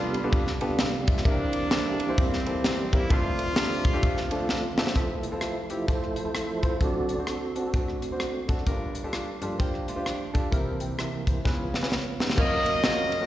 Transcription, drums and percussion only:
0.14 ride medium
0.33 kick loud
0.33 ride medium
0.47 snare soft
0.61 ride medium
0.79 snare loud
0.79 ride medium
1.07 kick loud
1.07 ride medium
1.17 snare soft
1.25 kick loud
1.25 ride medium
1.53 ride medium
1.71 snare loud
1.71 ride medium
2.00 ride medium
2.18 kick loud
2.18 ride medium
2.33 snare soft
2.46 ride medium
2.64 snare loud
2.64 ride medium
2.93 kick medium
2.93 ride medium
3.10 kick loud
3.10 ride medium
3.39 ride medium
3.56 snare loud
3.56 ride medium
3.85 kick loud
3.85 ride medium
4.03 kick loud
4.03 ride medium
4.17 snare soft
4.31 ride medium
4.49 snare medium
4.78 snare loud
4.87 snare medium
4.96 kick medium
4.96 closed hi-hat medium
5.23 closed hi-hat medium
5.41 cross-stick loud
5.41 closed hi-hat medium
5.70 closed hi-hat medium
5.88 kick medium
5.88 closed hi-hat medium
6.03 cross-stick soft
6.16 closed hi-hat medium
6.35 cross-stick loud
6.35 closed hi-hat medium
6.63 kick medium
6.63 closed hi-hat medium
6.81 kick medium
6.81 closed hi-hat medium
7.09 closed hi-hat medium
7.27 cross-stick loud
7.27 closed hi-hat medium
7.56 closed hi-hat medium
7.74 kick loud
7.74 closed hi-hat medium
7.88 cross-stick soft
8.02 closed hi-hat medium
8.20 cross-stick loud
8.20 closed hi-hat medium
8.49 kick medium
8.49 closed hi-hat medium
8.58 cross-stick soft
8.67 kick medium
8.67 closed hi-hat medium
8.95 closed hi-hat medium
9.13 cross-stick medium
9.13 closed hi-hat medium
9.42 closed hi-hat medium
9.60 kick medium
9.60 closed hi-hat medium
9.74 cross-stick soft
9.88 closed hi-hat medium
10.06 cross-stick loud
10.06 closed hi-hat medium
10.35 kick medium
10.35 closed hi-hat medium
10.52 kick medium
10.52 closed hi-hat medium
10.80 closed hi-hat medium
10.99 cross-stick medium
10.99 closed hi-hat medium
11.27 kick medium
11.27 closed hi-hat medium
11.45 kick loud
11.45 snare soft
11.74 snare medium
11.83 snare medium
11.92 snare medium
12.20 snare medium
12.30 snare medium
12.38 kick loud
12.38 crash medium
12.66 ride medium
12.84 snare loud
12.84 ride medium
13.12 ride medium

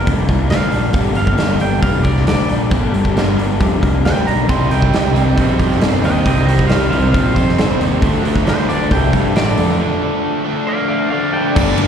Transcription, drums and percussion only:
0.07 kick loud
0.07 open hi-hat medium
0.29 kick medium
0.29 open hi-hat soft
0.50 snare loud
0.50 open hi-hat medium
0.72 open hi-hat medium
0.93 kick loud
0.93 open hi-hat medium
1.15 open hi-hat medium
1.27 kick medium
1.38 snare loud
1.38 open hi-hat medium
1.60 open hi-hat medium
1.83 kick loud
1.83 open hi-hat medium
2.04 kick medium
2.04 open hi-hat medium
2.17 snare soft
2.27 snare loud
2.27 open hi-hat medium
2.49 open hi-hat medium
2.71 kick loud
2.71 open hi-hat medium
2.94 open hi-hat medium
3.05 kick medium
3.17 snare loud
3.17 open hi-hat medium
3.39 open hi-hat medium
3.61 kick loud
3.61 open hi-hat medium
3.83 kick medium
3.83 open hi-hat medium
4.05 snare loud
4.05 open hi-hat medium
4.28 open hi-hat medium
4.49 kick loud
4.49 open hi-hat medium
4.71 open hi-hat medium
4.82 kick medium
4.94 snare loud
4.94 open hi-hat medium
5.16 open hi-hat medium
5.38 kick loud
5.38 open hi-hat medium
5.59 kick medium
5.59 open hi-hat medium
5.71 snare soft
5.82 snare loud
5.82 open hi-hat medium
6.04 open hi-hat medium
6.26 kick loud
6.26 open hi-hat medium
6.49 open hi-hat medium
6.59 kick medium
6.59 snare soft
6.70 snare loud
6.70 open hi-hat medium
6.93 open hi-hat medium
7.14 kick loud
7.14 open hi-hat medium
7.36 kick medium
7.36 open hi-hat medium
7.49 snare soft
7.59 snare loud
7.59 open hi-hat medium
7.81 open hi-hat medium
8.02 kick loud
8.02 open hi-hat medium
8.25 open hi-hat medium
8.36 kick medium
8.36 snare soft
8.47 snare loud
8.47 open hi-hat medium
8.70 open hi-hat medium
8.91 kick loud
8.91 open hi-hat medium
9.13 kick medium
9.13 open hi-hat medium
9.36 snare loud
9.36 open hi-hat medium
9.58 open hi-hat medium
11.56 kick loud
11.56 crash loud
11.78 ride medium

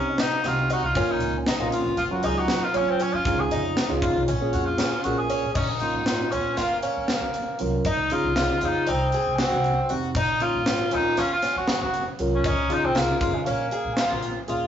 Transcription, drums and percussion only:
0.18 snare loud
0.18 closed hi-hat medium
0.44 snare soft
0.44 closed hi-hat medium
0.70 closed hi-hat medium
0.95 kick medium
0.95 closed hi-hat medium
1.20 closed hi-hat medium
1.46 snare loud
1.46 closed hi-hat medium
1.72 closed hi-hat medium
1.97 closed hi-hat medium
2.23 closed hi-hat medium
2.48 snare loud
2.48 closed hi-hat medium
2.74 closed hi-hat medium
3.00 closed hi-hat medium
3.25 kick loud
3.25 closed hi-hat medium
3.51 closed hi-hat medium
3.77 snare loud
3.77 closed hi-hat medium
4.02 kick medium
4.02 closed hi-hat medium
4.28 closed hi-hat medium
4.53 closed hi-hat medium
4.78 snare loud
4.78 closed hi-hat medium
5.04 closed hi-hat medium
5.30 closed hi-hat medium
5.55 kick medium
5.55 crash medium
5.80 closed hi-hat medium
6.06 snare medium
6.06 closed hi-hat medium
6.32 closed hi-hat medium
6.57 snare soft
6.57 closed hi-hat medium
6.83 closed hi-hat medium
7.08 snare medium
7.08 closed hi-hat medium
7.34 closed hi-hat soft
7.59 closed hi-hat medium
7.85 kick medium
7.85 closed hi-hat medium
8.10 closed hi-hat medium
8.36 snare loud
8.36 closed hi-hat medium
8.61 closed hi-hat medium
8.87 closed hi-hat medium
9.12 closed hi-hat medium
9.38 snare medium
9.38 closed hi-hat medium
9.64 closed hi-hat soft
9.89 closed hi-hat medium
10.15 kick medium
10.15 closed hi-hat medium
10.40 closed hi-hat medium
10.66 snare loud
10.66 closed hi-hat medium
10.91 closed hi-hat medium
11.17 snare soft
11.17 closed hi-hat medium
11.42 snare soft
11.42 closed hi-hat medium
11.68 snare loud
11.68 closed hi-hat medium
11.94 closed hi-hat medium
12.19 closed hi-hat medium
12.44 kick medium
12.44 closed hi-hat medium
12.70 closed hi-hat medium
12.96 snare loud
12.96 closed hi-hat medium
13.21 kick medium
13.21 closed hi-hat medium
13.46 closed hi-hat medium
13.71 closed hi-hat soft
13.97 snare medium
13.97 closed hi-hat medium
14.22 closed hi-hat soft
14.48 closed hi-hat medium

